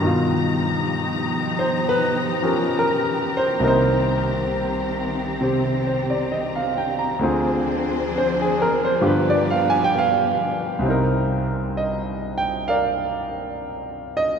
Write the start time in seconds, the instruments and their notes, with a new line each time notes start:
Already playing: string section A#5
0.00 grand piano G2 B2 D#3, string section F3 G4
0.04 string section B2 D#4, grand piano F4
1.59 grand piano C5
1.89 grand piano B4
2.42 grand piano F3 C#4 G4 A#4
2.79 grand piano A#4
3.37 grand piano C5
3.60 grand piano C2 C3 A#3 D#4, string section D#3 C4
3.64 grand piano A#4 C5
5.41 grand piano C3 C4 G4
5.87 grand piano C5
6.10 grand piano D5
6.32 grand piano D#5
6.56 grand piano F5
6.78 grand piano G5
6.99 grand piano A#5
7.19 grand piano D2 D3 C4, string section F3 C4 D4 G#4 C5
7.23 grand piano F4 G#4
8.18 grand piano C5
8.41 grand piano G#4
8.62 grand piano A#4
8.85 grand piano C5
9.01 grand piano G2 D3 B3 F4 G4, string section B3 G4 B4
9.07 grand piano B4
9.30 grand piano D5
9.51 grand piano F5
9.70 grand piano G#5
9.84 grand piano G5
9.98 grand piano F5
10.79 grand piano C2 C3
10.85 grand piano C4 D#4
10.90 grand piano A#4
11.77 grand piano D#5
12.38 grand piano G5
12.68 grand piano A#4 D5 F5
14.17 grand piano D#5